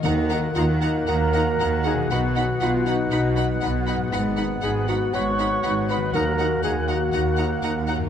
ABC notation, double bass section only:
X:1
M:4/4
L:1/8
Q:1/4=119
K:Ebm
V:1 name="Double bass section" clef=bass
E,,2 E,,2 E,,2 E,,2 | =B,,,2 B,,,2 B,,,2 B,,,2 | A,,,2 A,,,2 A,,,2 A,,,2 | E,,2 E,,2 E,,2 E,,2 |]